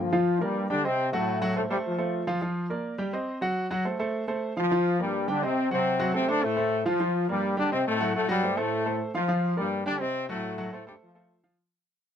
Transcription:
0.00 trombone section F3 F4
0.12 grand piano F3 F4 F5
0.41 trombone section G2 G3, grand piano A#3 A#4 D5
0.70 trombone section D3 D4, grand piano G3 G4 G5
0.84 trombone section C3 C4, grand piano C4 C5 D#5
1.13 trombone section A2 A3, grand piano F#3 F#4 F#5
1.41 grand piano F#3 F#4 F#5
1.56 trombone section A2 A3, grand piano A3 A4 C5
1.70 trombone section G2 G3, grand piano A3 A4 C5
1.86 trombone section F3 F4
1.98 grand piano A3 A4 C5
2.27 grand piano F3 F4 F5
2.42 grand piano F3 F4 F5
2.70 grand piano A#3 A#4 D5
2.98 grand piano G3 G4 G5
3.13 grand piano C4 C5 D#5
3.41 grand piano F#3 F#4 F#5
3.71 grand piano F#3 F#4 F#5
3.85 grand piano A3 A4 C5
3.99 grand piano A3 A4 C5
4.28 grand piano A3 A4 C5
4.57 grand piano F3 F4 F5, trombone section F3 F4
4.72 grand piano F3 F4 F5
4.99 trombone section G2 G3, grand piano A#3 A#4 D5
5.28 trombone section D3 D4, grand piano G3 G4 G5
5.42 trombone section C3 C4, grand piano C4 C5 D#5
5.71 trombone section C3 C4, grand piano F#3 F#4 F#5
5.99 grand piano F#3 F#4 F#5
6.14 trombone section C3 C4, grand piano A3 A4 C5
6.28 trombone section D3 D4, grand piano A3 A4 C5
6.44 trombone section A2 A3
6.57 grand piano A3 A4 C5
6.86 grand piano F3 F4 F5, trombone section F3 F4
7.00 grand piano F3 F4 F5
7.29 trombone section G2 G3, grand piano A#3 A#4 D5
7.57 trombone section D3 D4, grand piano G3 G4 G5
7.72 trombone section C3 C4, grand piano C4 C5 D#5
7.88 trombone section A2 A3
8.00 grand piano F#3 F#4 F#5
8.16 trombone section A2 A3
8.28 trombone section G2 G3, grand piano F#3 F#4 F#5
8.43 grand piano A3 A4 C5
8.56 trombone section A2 A3, grand piano A3 A4 C5
8.86 grand piano A3 A4 C5
9.14 grand piano F3 F4 F5, trombone section F3 F4
9.28 grand piano F3 F4 F5
9.57 trombone section G2 G3, grand piano A#3 A#4 D5
9.86 trombone section D3 D4, grand piano G3 G4 G5
10.01 trombone section C3 C4, grand piano C4 C5 D#5
10.29 trombone section A2 A3, grand piano F#3 F#4 F#5
10.58 grand piano F#3 F#4 F#5
10.72 trombone section A2 A3, grand piano A3 A4 C5
10.87 trombone section G2 G3, grand piano A3 A4 C5
11.02 trombone section F3 F4
11.15 grand piano A3 A4 C5
11.44 grand piano F3 F4 F5

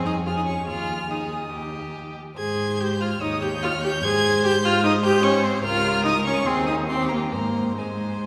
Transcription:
Already playing: cello F2, violin G#4
0.06 viola D#4, violin D#6
0.26 viola F4, violin G#4 F6
0.36 viola D#4, violin D#6
0.46 viola C#4, violin C#6
0.67 cello D#2, viola F4, violin G#4 F6
1.09 viola D#4, violin G#4 D#6
1.52 cello D#2, violin G4
2.38 cello G#2, viola G#4, violin C5 G#6
2.80 viola G4, violin G6
3.01 viola F4, violin F6
3.21 cello D#2, viola D#4, violin C#5 D#6
3.42 viola G4, violin G6
3.62 viola F4, violin F6
3.83 viola G4, violin G6
4.03 cello G#2, viola G#4, violin C5 G#6
4.44 viola G4, violin G6
4.64 viola F4, violin F6
4.85 viola D#4, violin C5 D#6
5.04 viola G4, violin G6
5.23 viola C#4, violin C#6
5.43 viola C4, violin C6
5.64 cello C#2, viola F4, violin A#4 F6
6.04 viola D#4, violin D#6
6.24 viola C#4, violin C#6
6.46 cello D#2, viola C4, violin G#4 C6
6.66 viola D#4, violin D#6
6.87 viola C4, violin G4 C6
7.08 viola A#3, violin A#5
7.31 cello G#2, viola A#3, violin C5 A#5
7.78 viola G#3, violin C5 G#5

